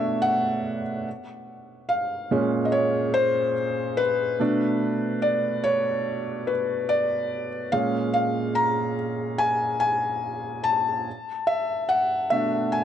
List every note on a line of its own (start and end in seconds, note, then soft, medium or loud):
0.00 0.19 B2 soft
0.00 0.19 A3 soft
0.00 0.19 D4 medium
0.00 1.08 C#5 medium
0.00 1.08 D5 medium
0.00 0.23 E5 medium
0.22 0.81 F#5 loud
1.89 2.68 F5 medium
2.31 3.52 A#2 medium
2.31 3.52 G#3 medium
2.31 3.53 C#4 medium
2.65 2.72 D#5 medium
2.72 3.15 C#5 medium
3.14 4.00 C5 loud
3.97 5.18 B4 loud
4.39 5.60 B2 medium
4.39 5.61 A3 medium
4.39 5.61 D4 medium
5.22 5.61 D5 medium
5.64 6.50 C#5 loud
6.47 6.90 B4 medium
6.89 7.48 D5 medium
7.72 8.94 A#2 medium
7.72 8.94 G#3 medium
7.72 8.94 C#4 medium
7.72 8.12 F5 loud
8.14 8.57 F5 medium
8.55 9.41 A#5 loud
9.38 9.78 G#5 loud
9.80 10.66 G#5 loud
10.64 11.50 A5 loud
11.47 11.90 E5 loud
11.89 12.32 F#5 medium
12.30 12.84 B2 medium
12.30 12.84 A3 medium
12.30 12.84 D4 medium
12.30 12.74 E5 medium
12.72 12.84 G#5 loud